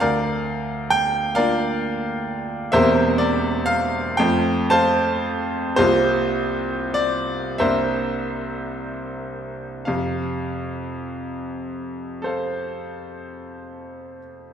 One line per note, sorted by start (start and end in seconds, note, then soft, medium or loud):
0.00 1.35 D2 medium
0.00 0.89 A#4 medium
0.00 0.89 D5 medium
0.00 0.93 F5 loud
0.90 1.37 G5 loud
1.35 2.69 A#3 medium
1.35 2.69 D4 medium
1.35 2.70 F4 medium
1.35 1.79 A#4 medium
1.35 1.79 D5 medium
1.35 1.82 F5 loud
2.72 4.16 E1 medium
2.72 4.17 E2 medium
2.72 4.17 A#3 medium
2.72 4.17 C4 medium
2.72 4.17 G4 medium
2.72 3.17 A#4 medium
2.72 3.17 C5 loud
2.72 3.20 E5 loud
3.18 3.68 D5 loud
3.66 4.19 F5 loud
4.17 5.74 F2 medium
4.17 5.74 A3 medium
4.17 5.75 C4 medium
4.17 5.75 F4 medium
4.17 4.71 G5 loud
4.70 5.74 C5 medium
4.70 5.74 F5 loud
4.70 5.78 A5 loud
5.76 7.57 C2 medium
5.76 7.57 A#3 medium
5.76 7.58 C4 medium
5.76 6.93 F4 medium
5.76 6.92 G4 medium
5.76 6.96 C5 loud
6.94 7.60 D5 loud
7.58 9.83 C2 medium
7.58 9.83 A#3 medium
7.58 9.83 C4 medium
7.58 9.84 D4 soft
7.58 9.83 A#4 medium
7.58 9.83 C5 medium
7.58 9.86 E5 loud
9.85 14.17 F2 medium
9.85 14.17 C3 medium
9.85 12.24 F5 medium
12.22 14.53 A4 medium
12.22 14.53 C5 medium
12.22 14.53 F5 soft